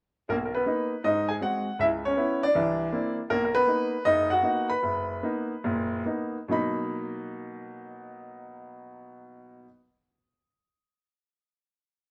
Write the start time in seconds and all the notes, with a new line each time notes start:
0.29 B1 A#3 A#4
0.45 A#4
0.55 B3 B4
0.66 A#3 B3 D#4
1.04 G#2 D#4 D#5
1.29 G#4 G#5
1.41 G#3 C4 F#4 F#5
1.79 C#2 E4 E5
2.05 C#4 C#5
2.17 B3 C#4 E4
2.43 D4 D5
2.55 C2 E3
2.92 A#3 C4 D4 E4
3.30 B1 A#3 A#4
3.45 A#4
3.55 B3 B4
3.67 A#3 B3 D#4
4.05 F#1 D#4 D#5
4.30 F#4 F#5
4.43 A#3 B3 D#4
4.70 B4 B5
4.83 F#1
5.23 A#3 B3 D#4
5.64 F#1 A#2
6.06 A#3 B3 D#4
6.48 B2 F#3 A#3 D#4
6.52 B5